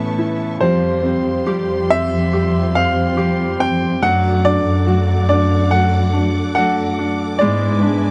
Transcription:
0.00 0.13 A2 medium
0.00 0.61 A2 medium
0.00 0.61 E3 medium
0.00 0.63 A3 soft
0.00 0.61 B3 medium
0.00 0.61 C#4 medium
0.00 0.18 E4 soft
0.00 0.62 E4 medium
0.00 0.57 B4 medium
0.00 0.57 E5 medium
0.00 0.58 A5 medium
0.00 0.58 C#6 medium
0.18 0.60 E4 soft
0.61 1.21 F2 medium
0.61 3.99 F3 medium
0.61 1.04 F3 medium
0.61 1.04 G3 medium
0.61 1.03 C4 medium
0.61 4.00 F4 medium
0.61 4.00 G4 medium
0.61 1.02 G4 medium
0.61 1.94 C5 medium
0.61 4.00 C5 medium
0.61 4.00 C6 medium
1.03 1.45 G3 soft
1.03 1.89 C4 soft
1.03 1.46 C4 soft
1.03 1.46 G4 soft
1.25 3.99 F2 medium
1.46 1.89 F3 medium
1.46 1.90 G3 medium
1.46 1.90 C4 medium
1.46 2.32 G4 medium
1.46 1.89 G4 medium
1.90 2.32 G3 soft
1.90 2.33 C4 soft
1.90 2.74 C4 soft
1.90 2.33 G4 soft
1.90 2.78 E5 loud
2.33 2.76 F3 soft
2.33 2.76 G3 medium
2.33 2.75 C4 medium
2.33 3.16 G4 soft
2.33 2.74 G4 soft
2.75 3.17 G3 soft
2.75 3.58 C4 soft
2.75 3.17 C4 soft
2.75 3.18 G4 soft
2.75 3.63 F5 medium
3.17 4.02 F3 medium
3.17 4.03 G3 medium
3.17 4.03 C4 medium
3.17 4.00 G4 medium
3.17 4.04 G4 medium
3.59 4.01 C4 soft
3.59 4.04 G5 medium
4.02 4.62 F#2 medium
4.02 4.45 F#3 medium
4.02 7.38 F#3 medium
4.02 4.45 A3 medium
4.02 4.44 D4 medium
4.02 4.43 F#4 medium
4.02 7.38 A4 medium
4.02 7.39 D5 medium
4.02 4.42 F#5 loud
4.02 7.39 F#5 medium
4.02 8.11 D6 medium
4.45 4.87 A3 soft
4.45 5.27 D4 soft
4.45 4.87 D4 soft
4.45 4.87 F#4 soft
4.45 5.27 D5 loud
4.67 6.96 F#2 loud
4.87 5.30 F#3 medium
4.87 5.30 A3 medium
4.87 5.29 D4 medium
4.87 6.53 F#4 medium
4.87 5.28 F#4 medium
5.29 5.71 A3 soft
5.29 6.11 D4 soft
5.29 5.72 D4 soft
5.29 5.72 F#4 soft
5.29 5.69 D5 medium
5.71 6.14 F#3 soft
5.71 6.15 A3 soft
5.71 6.14 D4 medium
5.71 6.13 F#4 medium
5.71 6.54 A4 soft
5.71 6.53 F#5 medium
6.13 6.56 A3 soft
6.13 6.97 D4 soft
6.13 6.57 D4 soft
6.13 6.57 F#4 soft
6.55 7.40 F#3 medium
6.55 7.41 A3 medium
6.55 7.41 D4 medium
6.55 7.42 F#4 medium
6.55 7.39 A4 medium
6.55 7.16 F#5 medium
6.99 7.40 D4 soft
7.39 8.02 G#2 loud
7.39 8.11 G#3 medium
7.39 7.84 G#3 medium
7.39 7.84 B3 medium
7.39 7.83 D4 medium
7.39 7.82 E4 medium
7.39 8.11 B4 medium
7.39 8.11 D5 medium
7.39 8.11 E5 medium
7.39 8.11 G#5 medium
7.82 8.11 B3 soft
7.82 8.11 D4 soft
7.82 8.11 E4 soft
8.05 8.11 G#2 medium

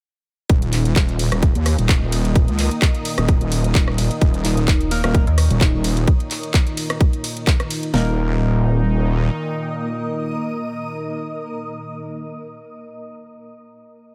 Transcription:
0.49 0.94 D#1 loud
0.49 7.90 A#2 medium
0.49 7.90 D#3 medium
0.49 6.08 A#3 medium
0.49 7.90 D#4 medium
0.49 kick loud
0.49 closed hi-hat medium
0.58 6.08 A#4 medium
0.62 closed hi-hat soft
0.73 clap soft
0.73 open hi-hat loud
0.73 ride medium
0.85 4.01 D#5 medium
0.85 closed hi-hat medium
0.91 6.08 D#6 medium
0.96 1.30 D#1 loud
0.96 kick loud
0.96 clap loud
0.96 closed hi-hat medium
1.09 closed hi-hat soft
1.19 open hi-hat loud
1.19 ride medium
1.32 1.53 D#1 loud
1.32 cross-stick medium
1.32 closed hi-hat medium
1.43 kick loud
1.43 closed hi-hat medium
1.55 1.76 D#2 loud
1.55 closed hi-hat soft
1.66 cross-stick medium
1.66 open hi-hat loud
1.66 ride medium
1.79 2.00 D#1 loud
1.79 closed hi-hat medium
1.89 kick loud
1.89 clap loud
1.89 closed hi-hat medium
2.02 2.46 D#1 loud
2.12 open hi-hat loud
2.12 ride medium
2.25 closed hi-hat medium
2.35 kick loud
2.35 closed hi-hat medium
2.48 2.69 C#2 loud
2.48 closed hi-hat soft
2.59 clap soft
2.59 open hi-hat loud
2.59 ride medium
2.71 closed hi-hat medium
2.82 kick loud
2.82 clap loud
2.82 closed hi-hat medium
2.95 closed hi-hat soft
3.05 open hi-hat loud
3.05 ride medium
3.18 3.39 D#1 loud
3.18 cross-stick medium
3.18 closed hi-hat medium
3.28 kick loud
3.28 closed hi-hat medium
3.41 3.73 D#1 loud
3.41 closed hi-hat soft
3.52 open hi-hat loud
3.52 ride medium
3.64 closed hi-hat medium
3.75 4.09 D#1 loud
3.75 kick loud
3.75 clap loud
3.75 closed hi-hat medium
3.87 6.08 C#5 medium
3.87 cross-stick medium
3.98 open hi-hat loud
3.98 ride medium
4.11 closed hi-hat medium
4.21 4.66 D#1 medium
4.21 kick loud
4.21 closed hi-hat medium
4.34 closed hi-hat soft
4.45 4.89 D#4 loud
4.45 clap soft
4.45 open hi-hat loud
4.45 ride medium
4.57 closed hi-hat medium
4.68 5.02 D#1 loud
4.68 kick loud
4.68 clap loud
4.68 closed hi-hat medium
4.81 closed hi-hat soft
4.91 5.02 A#3 loud
4.91 5.02 D#4 medium
4.91 4.99 D#4 medium
4.91 5.02 A#4 loud
4.91 open hi-hat loud
4.91 ride medium
5.04 5.25 D#1 medium
5.04 5.25 A#3 loud
5.04 5.11 D#4 medium
5.04 5.25 D#4 medium
5.04 5.25 A#4 loud
5.04 cross-stick medium
5.04 closed hi-hat medium
5.14 kick loud
5.14 closed hi-hat medium
5.27 5.48 D#2 loud
5.27 closed hi-hat soft
5.38 cross-stick medium
5.38 open hi-hat loud
5.38 ride medium
5.50 5.72 D#1 loud
5.50 closed hi-hat medium
5.61 6.08 D#4 medium
5.61 kick loud
5.61 clap loud
5.61 closed hi-hat medium
5.74 6.06 D#1 loud
5.84 open hi-hat loud
5.84 ride medium
5.97 closed hi-hat medium
6.07 kick loud
6.07 closed hi-hat medium
6.20 closed hi-hat soft
6.31 clap soft
6.31 open hi-hat loud
6.31 ride medium
6.43 closed hi-hat soft
6.54 kick loud
6.54 clap loud
6.54 closed hi-hat medium
6.67 closed hi-hat soft
6.77 open hi-hat loud
6.77 ride medium
6.90 cross-stick medium
6.90 closed hi-hat medium
7.01 kick loud
7.01 closed hi-hat medium
7.13 closed hi-hat soft
7.24 open hi-hat loud
7.24 ride medium
7.37 closed hi-hat medium
7.47 kick loud
7.47 clap loud
7.47 closed hi-hat medium
7.60 cross-stick medium
7.60 closed hi-hat soft
7.70 open hi-hat loud
7.70 ride medium
7.83 closed hi-hat medium
7.94 9.29 D#1 loud
7.94 12.19 A#2 medium
7.94 12.19 D#3 medium
7.94 12.19 A#3 medium
7.94 12.19 D#4 medium
7.94 12.19 A#4 medium
7.94 snare loud
8.01 12.26 A#4 medium
8.09 12.34 D#5 medium
8.15 12.40 D#6 medium

